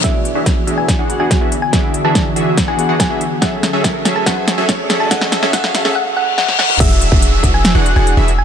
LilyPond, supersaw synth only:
\new Staff \with { instrumentName = "Supersaw synth" } { \time 4/4 \key e \mixolydian \tempo 4 = 142 <e d' fis' gis' e''>8. <e d' fis' gis' e''>8. <e d' fis' gis' e''>8. <e d' fis' gis' fis''>8 <e d' fis' gis' fis''>8 <e d' fis' gis' e''>16 r8 | <e d' fis' gis' e''>8. <e d' fis' gis' e''>8. <e d' fis' gis' e''>8. <e d' fis' gis' fis''>8 <e d' fis' gis' fis''>8 <e d' fis' gis' e''>16 r8 | <fis cis' gis' a' e''>8. <fis cis' gis' a' e''>8. <fis cis' gis' a' e''>8 <fis cis' gis' a' e''>8. <fis cis' gis' a' e''>8. <fis cis' gis' a' e''>8 | <fis cis' gis' a' e''>8. <fis cis' gis' a' e''>16 <a' e''>8. <fis cis' gis' a' e''>16 r2 |
<e d' fis' gis' e''>8. <e d' fis' gis' e''>8. <e d' fis' gis' e''>8. <e d' fis' gis' fis''>8 <e d' fis' gis' fis''>8 <e d' fis' gis' e''>16 r8 | }